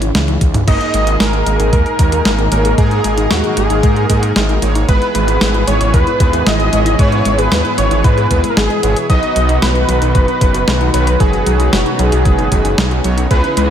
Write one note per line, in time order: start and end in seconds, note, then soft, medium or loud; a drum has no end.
0.00 0.11 G#1 medium
0.00 0.64 C#3 medium
0.00 0.64 E3 medium
0.00 0.64 G#3 medium
0.00 0.65 C#4 medium
0.00 0.64 E4 medium
0.00 0.11 E4 medium
0.00 closed hi-hat medium
0.15 0.37 C#2 loud
0.15 0.24 G#3 loud
0.15 snare loud
0.15 closed hi-hat medium
0.15 high tom medium
0.28 0.37 D#4 medium
0.28 closed hi-hat soft
0.28 high tom medium
0.41 0.64 C#2 medium
0.41 0.50 G#3 medium
0.41 kick loud
0.41 closed hi-hat medium
0.54 0.64 D#4 medium
0.54 closed hi-hat medium
0.54 mid tom medium
0.67 0.79 G#1 loud
0.67 1.96 G#2 medium
0.67 4.85 A#2 medium
0.67 4.85 D#3 medium
0.67 9.06 G#3 medium
0.67 0.77 G#3 medium
0.67 1.96 A#3 medium
0.67 4.84 D#4 medium
0.67 1.96 D#4 medium
0.67 2.76 G#4 medium
0.67 1.96 G#4 medium
0.67 1.96 A#4 loud
0.67 1.17 D#5 loud
0.67 kick loud
0.67 closed hi-hat medium
0.67 crash loud
0.81 0.90 D#4 medium
0.81 closed hi-hat soft
0.94 1.16 G#1 loud
0.94 1.06 G#3 loud
0.94 closed hi-hat loud
1.07 1.16 G#4 medium
1.07 closed hi-hat medium
1.20 1.43 G#1 medium
1.20 1.29 G#3 loud
1.20 1.69 A#4 loud
1.20 snare loud
1.20 closed hi-hat medium
1.33 1.42 D#4 medium
1.33 closed hi-hat soft
1.46 1.58 G#1 medium
1.46 1.56 G#3 medium
1.46 closed hi-hat loud
1.60 1.71 G#1 loud
1.60 1.69 D#4 medium
1.60 closed hi-hat medium
1.73 1.84 D#2 loud
1.73 1.85 G#3 loud
1.73 2.48 A#4 loud
1.73 kick loud
1.73 closed hi-hat medium
1.86 1.95 G#4 medium
1.86 closed hi-hat soft
1.99 2.22 D#2 medium
1.99 2.49 G#2 medium
1.99 2.08 G#3 loud
1.99 2.49 A#3 medium
1.99 2.49 D#4 medium
1.99 2.49 G#4 medium
1.99 2.49 A#4 medium
1.99 kick loud
1.99 closed hi-hat loud
2.12 2.21 D#4 medium
2.12 closed hi-hat medium
2.25 2.48 G#1 medium
2.25 2.35 G#3 medium
2.25 snare loud
2.25 closed hi-hat medium
2.39 2.48 D#4 medium
2.39 closed hi-hat soft
2.52 2.74 G#1 medium
2.52 2.75 G#2 medium
2.52 2.64 G#3 loud
2.52 2.75 A#3 medium
2.52 2.75 D#4 medium
2.52 2.75 G#4 medium
2.52 2.80 A#4 loud
2.52 2.75 C#5 medium
2.52 closed hi-hat medium
2.65 2.74 G#4 medium
2.65 closed hi-hat medium
2.78 4.06 G#2 loud
2.78 3.00 G#2 medium
2.78 2.87 G#3 loud
2.78 4.06 A#3 medium
2.78 4.06 D#4 medium
2.78 4.06 G#4 medium
2.78 3.32 G#4 loud
2.78 4.06 A#4 loud
2.78 4.86 A#4 medium
2.78 kick loud
2.78 closed hi-hat medium
2.91 3.00 D#4 medium
2.91 closed hi-hat soft
3.04 3.27 G#1 medium
3.04 3.14 G#3 medium
3.04 closed hi-hat loud
3.18 3.27 D#4 medium
3.18 closed hi-hat medium
3.31 3.42 D#2 medium
3.31 3.43 G#3 loud
3.31 3.56 F#4 medium
3.31 snare loud
3.31 closed hi-hat medium
3.44 3.53 G#4 medium
3.44 closed hi-hat soft
3.57 3.68 G#1 loud
3.57 3.66 G#3 loud
3.57 4.58 G#4 medium
3.57 closed hi-hat loud
3.70 3.81 G#1 medium
3.70 3.79 D#4 medium
3.70 closed hi-hat medium
3.83 4.06 G#2 medium
3.83 3.92 G#3 medium
3.83 kick loud
3.83 closed hi-hat medium
3.96 4.06 D#4 medium
3.96 closed hi-hat soft
4.10 4.59 G#2 medium
4.10 4.32 G#2 medium
4.10 4.22 G#3 loud
4.10 4.59 A#3 medium
4.10 4.59 D#4 medium
4.10 4.59 G#4 medium
4.10 4.59 A#4 medium
4.10 kick medium
4.10 closed hi-hat loud
4.23 4.32 G#4 medium
4.23 closed hi-hat medium
4.36 4.58 G#1 loud
4.36 4.45 G#3 loud
4.36 snare loud
4.36 closed hi-hat medium
4.49 4.58 D#4 medium
4.49 closed hi-hat soft
4.62 4.85 G#1 medium
4.62 4.71 G#3 medium
4.62 4.85 A#3 medium
4.62 4.85 D#4 medium
4.62 4.85 G#4 medium
4.62 4.85 C#5 medium
4.62 closed hi-hat loud
4.75 4.85 D#4 medium
4.75 closed hi-hat medium
4.89 5.00 G#1 loud
4.89 6.17 G#2 loud
4.89 9.06 B2 medium
4.89 9.06 E3 medium
4.89 5.01 G#3 loud
4.89 6.17 B3 medium
4.89 9.06 E4 medium
4.89 6.17 E4 medium
4.89 6.17 G#4 medium
4.89 9.06 G#4 medium
4.89 6.17 B4 loud
4.89 5.13 B4 loud
4.89 kick loud
4.89 closed hi-hat medium
5.02 5.11 G#4 medium
5.02 closed hi-hat soft
5.15 5.37 G#1 loud
5.15 5.24 G#3 loud
5.15 5.64 B4 loud
5.15 closed hi-hat loud
5.28 5.37 E4 medium
5.28 closed hi-hat medium
5.41 5.64 G#1 medium
5.41 5.50 G#3 medium
5.41 snare loud
5.41 closed hi-hat medium
5.54 5.63 E4 medium
5.54 closed hi-hat soft
5.67 5.79 G#1 medium
5.67 5.80 G#3 loud
5.67 5.92 C#5 loud
5.67 closed hi-hat loud
5.81 5.92 G#1 loud
5.81 5.90 G#4 medium
5.81 closed hi-hat medium
5.94 6.05 D#2 loud
5.94 6.03 G#3 loud
5.94 6.48 B4 loud
5.94 kick loud
5.94 closed hi-hat medium
6.07 6.16 E4 medium
6.07 closed hi-hat soft
6.20 6.43 D#2 medium
6.20 6.70 G#2 medium
6.20 6.29 G#3 medium
6.20 6.70 B3 medium
6.20 6.70 E4 medium
6.20 6.70 G#4 medium
6.20 6.70 B4 medium
6.20 kick loud
6.20 closed hi-hat medium
6.33 6.42 E4 medium
6.33 closed hi-hat medium
6.46 6.69 G#1 loud
6.46 6.59 G#3 loud
6.46 7.00 D#5 loud
6.46 snare loud
6.46 closed hi-hat medium
6.60 6.69 G#4 medium
6.60 closed hi-hat soft
6.73 6.95 G#1 medium
6.73 6.96 G#2 medium
6.73 6.82 G#3 loud
6.73 6.96 B3 medium
6.73 6.96 E4 medium
6.73 6.96 G#4 medium
6.73 6.96 C#5 medium
6.73 closed hi-hat medium
6.86 6.95 E4 medium
6.86 closed hi-hat medium
6.99 8.27 G#2 loud
6.99 7.21 G#2 medium
6.99 7.08 G#3 medium
6.99 8.27 B3 medium
6.99 8.27 E4 medium
6.99 8.27 G#4 medium
6.99 8.27 B4 loud
6.99 7.40 C#5 loud
6.99 kick loud
6.99 closed hi-hat medium
7.12 7.21 E4 medium
7.12 closed hi-hat soft
7.25 7.48 G#1 medium
7.25 7.38 G#3 loud
7.25 closed hi-hat medium
7.38 7.48 G#4 medium
7.38 7.77 B4 loud
7.38 closed hi-hat medium
7.52 7.63 D#2 medium
7.52 7.61 G#3 loud
7.52 snare loud
7.52 closed hi-hat medium
7.65 7.74 E4 medium
7.65 closed hi-hat soft
7.78 7.89 G#1 loud
7.78 7.87 G#3 medium
7.78 8.06 C#5 loud
7.78 closed hi-hat medium
7.91 8.02 G#1 medium
7.91 8.00 E4 medium
7.91 closed hi-hat medium
8.04 8.27 G#2 medium
8.04 8.17 G#3 loud
8.04 8.49 B4 loud
8.04 kick loud
8.04 closed hi-hat soft
8.17 8.27 G#4 medium
8.17 closed hi-hat soft
8.31 8.42 D#2 loud
8.31 8.80 G#2 medium
8.31 8.42 G#3 loud
8.31 8.80 B3 medium
8.31 8.80 E4 medium
8.31 8.80 G#4 medium
8.31 8.80 B4 medium
8.31 kick medium
8.31 closed hi-hat medium
8.44 8.53 G#3 medium
8.44 closed hi-hat medium
8.50 8.58 A#4 medium
8.57 8.68 G#1 loud
8.57 8.96 G#4 loud
8.57 8.69 G#4 medium
8.57 snare loud
8.57 closed hi-hat medium
8.70 8.83 G#3 loud
8.70 closed hi-hat soft
8.83 8.95 G#1 medium
8.83 9.06 B2 medium
8.83 9.06 B3 medium
8.83 9.06 E4 medium
8.83 9.06 G#4 medium
8.83 8.89 B4 medium
8.83 9.06 C#5 medium
8.83 closed hi-hat medium
8.96 9.06 G#4 medium
8.96 closed hi-hat medium
9.09 9.21 B1 loud
9.09 10.38 B2 loud
9.09 13.27 B2 medium
9.09 13.27 D#3 medium
9.09 9.19 F#3 loud
9.09 13.27 F#3 medium
9.09 10.38 B3 medium
9.09 10.38 D#4 medium
9.09 11.18 D#4 medium
9.09 10.38 F#4 medium
9.09 13.27 F#4 medium
9.09 10.38 B4 loud
9.09 9.58 D#5 loud
9.09 kick loud
9.09 closed hi-hat medium
9.23 9.32 D#4 medium
9.23 closed hi-hat soft
9.36 9.58 B1 loud
9.36 9.45 F#3 medium
9.36 closed hi-hat medium
9.49 9.58 D#4 medium
9.49 closed hi-hat soft
9.62 9.85 B1 medium
9.62 9.75 F#3 loud
9.62 10.11 B4 loud
9.62 snare loud
9.62 closed hi-hat medium
9.75 9.85 F#4 medium
9.75 closed hi-hat soft
9.89 10.00 B1 medium
9.89 9.98 F#3 loud
9.89 closed hi-hat medium
10.02 10.13 B1 loud
10.02 10.11 D#4 medium
10.02 closed hi-hat medium
10.15 10.26 F#1 loud
10.15 10.24 F#3 medium
10.15 10.90 B4 loud
10.15 kick loud
10.15 closed hi-hat soft
10.28 10.37 D#4 medium
10.28 closed hi-hat soft
10.41 10.64 F#1 medium
10.41 10.91 B2 medium
10.41 10.54 F#3 loud
10.41 10.91 B3 medium
10.41 10.91 D#4 medium
10.41 10.91 F#4 medium
10.41 10.91 B4 medium
10.41 kick loud
10.41 closed hi-hat medium
10.54 10.64 F#4 medium
10.54 closed hi-hat medium
10.68 10.90 B1 medium
10.68 10.77 F#3 loud
10.68 snare loud
10.68 closed hi-hat medium
10.81 10.90 D#4 medium
10.81 closed hi-hat soft
10.94 11.16 B1 medium
10.94 11.17 B2 medium
10.94 11.03 F#3 medium
10.94 11.17 B3 medium
10.94 11.17 D#4 medium
10.94 11.17 F#4 medium
10.94 11.22 B4 loud
10.94 11.17 C#5 medium
10.94 closed hi-hat medium
11.07 11.16 D#4 medium
11.07 closed hi-hat medium
11.20 11.43 F#1 medium
11.20 12.49 B2 loud
11.20 11.33 F#3 loud
11.20 12.49 B3 medium
11.20 13.29 C#4 medium
11.20 12.49 D#4 medium
11.20 12.49 F#4 medium
11.20 11.74 G#4 loud
11.20 12.49 B4 loud
11.20 kick loud
11.20 closed hi-hat medium
11.33 11.42 F#4 medium
11.33 closed hi-hat soft
11.46 11.69 B1 medium
11.46 11.56 F#3 loud
11.46 closed hi-hat medium
11.60 11.69 D#4 medium
11.60 closed hi-hat soft
11.73 11.84 F#1 medium
11.73 11.82 F#3 medium
11.73 12.00 F#4 medium
11.73 snare loud
11.73 closed hi-hat medium
11.86 11.95 D#4 medium
11.86 closed hi-hat soft
11.99 12.10 B1 loud
11.99 12.12 F#3 loud
11.99 13.04 G#4 medium
11.99 closed hi-hat medium
12.12 12.23 B1 medium
12.12 12.21 F#4 medium
12.12 closed hi-hat medium
12.25 12.48 F#1 medium
12.25 12.35 F#3 loud
12.25 kick loud
12.25 closed hi-hat soft
12.39 12.48 D#4 medium
12.39 closed hi-hat soft
12.52 12.74 F#1 medium
12.52 13.01 B2 medium
12.52 12.61 F#3 medium
12.52 13.01 B3 medium
12.52 13.01 D#4 medium
12.52 13.01 F#4 medium
12.52 13.01 B4 medium
12.52 kick medium
12.52 closed hi-hat medium
12.65 12.74 D#4 medium
12.65 closed hi-hat medium
12.78 13.00 B1 loud
12.78 12.91 F#3 loud
12.78 snare loud
12.78 closed hi-hat soft
12.91 13.00 F#4 medium
12.91 closed hi-hat soft
13.04 13.27 B1 medium
13.04 13.13 F#3 loud
13.04 13.28 B3 medium
13.04 13.28 D#4 medium
13.04 13.28 F#4 medium
13.04 13.28 C#5 medium
13.04 closed hi-hat medium
13.18 13.27 D#4 medium
13.18 closed hi-hat medium
13.30 13.42 C#2 loud
13.30 13.70 C#3 loud
13.30 13.70 C#3 medium
13.30 13.70 E3 medium
13.30 13.40 G#3 medium
13.30 13.70 G#3 medium
13.30 13.70 C#4 medium
13.30 13.70 D#4 medium
13.30 13.70 E4 medium
13.30 13.70 G#4 loud
13.30 13.55 B4 loud
13.30 13.70 D#5 medium
13.30 kick loud
13.30 closed hi-hat soft
13.44 13.53 D#4 medium
13.44 closed hi-hat soft
13.57 13.70 C#2 loud
13.57 13.69 G#3 loud
13.57 13.70 B4 loud
13.57 closed hi-hat medium